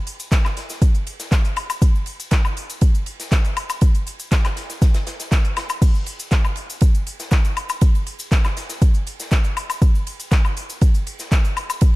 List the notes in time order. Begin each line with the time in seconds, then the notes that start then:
0.07 open hi-hat, ride
0.20 closed hi-hat, cabasa
0.32 kick, snare, clap, closed hi-hat, ride, cabasa
0.44 snare, clap, cabasa, high woodblock
0.57 snare, open hi-hat, ride
0.69 snare, closed hi-hat, cabasa
0.82 kick, closed hi-hat, ride, cabasa
0.95 closed hi-hat, cabasa
1.07 open hi-hat, ride
1.20 snare, closed hi-hat, cabasa
1.31 kick, snare, clap, closed hi-hat, ride, cabasa
1.45 closed hi-hat, cabasa
1.56 open hi-hat, ride, high woodblock
1.70 closed hi-hat, cabasa, high woodblock
1.82 kick, closed hi-hat, ride, cabasa
1.95 cabasa
2.06 open hi-hat, ride
2.20 closed hi-hat, cabasa
2.31 kick, snare, clap, closed hi-hat, ride, cabasa
2.45 cabasa, high woodblock
2.57 open hi-hat, ride
2.70 closed hi-hat, cabasa
2.81 kick, closed hi-hat, ride, cabasa
2.95 closed hi-hat, cabasa
3.06 open hi-hat, ride
3.20 snare, closed hi-hat, cabasa
3.32 kick, snare, clap, closed hi-hat, ride, cabasa
3.45 closed hi-hat, cabasa
3.57 open hi-hat, ride, high woodblock
3.69 closed hi-hat, cabasa, high woodblock
3.81 kick, closed hi-hat, ride, cabasa
3.95 closed hi-hat, ride, cabasa
4.07 open hi-hat, ride
4.20 closed hi-hat, cabasa
4.31 kick, snare, clap, closed hi-hat, ride, cabasa
4.44 snare, clap, closed hi-hat, cabasa, high woodblock
4.56 snare, open hi-hat, ride
4.70 snare, closed hi-hat, cabasa
4.82 kick, snare, closed hi-hat, ride, cabasa
4.94 snare, closed hi-hat, ride, cabasa
5.07 snare, open hi-hat, ride
5.20 snare, closed hi-hat, cabasa
5.31 kick, snare, clap, closed hi-hat, ride, cabasa
5.45 closed hi-hat, cabasa
5.56 snare, open hi-hat, ride, high woodblock
5.69 closed hi-hat, cabasa, high woodblock
5.82 kick, closed hi-hat, crash, ride, cabasa
5.95 cabasa
6.06 open hi-hat, ride
6.20 closed hi-hat, cabasa
6.31 kick, snare, clap, closed hi-hat, ride, cabasa
6.45 cabasa, high woodblock
6.56 open hi-hat, ride
6.70 closed hi-hat, cabasa
6.81 kick, closed hi-hat, ride, cabasa
6.95 closed hi-hat, cabasa
7.07 open hi-hat, ride
7.20 snare, closed hi-hat, cabasa
7.31 kick, snare, clap, closed hi-hat, ride, cabasa
7.45 closed hi-hat, cabasa
7.57 open hi-hat, ride, high woodblock
7.69 closed hi-hat, cabasa, high woodblock
7.81 kick, closed hi-hat, ride, cabasa
7.95 ride, cabasa
8.07 open hi-hat, ride
8.19 closed hi-hat, cabasa
8.32 kick, snare, clap, closed hi-hat, ride, cabasa
8.44 snare, clap, cabasa, high woodblock
8.57 snare, open hi-hat, ride
8.69 snare, closed hi-hat, cabasa
8.82 kick, closed hi-hat, ride, cabasa
8.94 closed hi-hat, cabasa
9.07 open hi-hat, ride
9.20 snare, closed hi-hat, cabasa
9.31 kick, snare, clap, closed hi-hat, ride, cabasa
9.44 closed hi-hat, cabasa
9.57 open hi-hat, ride, high woodblock
9.70 closed hi-hat, cabasa, high woodblock
9.82 kick, closed hi-hat, ride, cabasa
9.95 cabasa
10.07 open hi-hat, ride
10.20 closed hi-hat, cabasa
10.31 kick, snare, clap, closed hi-hat, ride, cabasa
10.45 cabasa, high woodblock
10.57 open hi-hat, ride
10.70 closed hi-hat, cabasa
10.81 kick, closed hi-hat, ride, cabasa
10.94 closed hi-hat, cabasa
11.07 open hi-hat, ride
11.19 snare, closed hi-hat, cabasa
11.32 kick, snare, clap, closed hi-hat, ride, cabasa
11.45 closed hi-hat, cabasa
11.57 open hi-hat, ride, high woodblock
11.70 closed hi-hat, cabasa, high woodblock
11.81 kick, closed hi-hat, ride, cabasa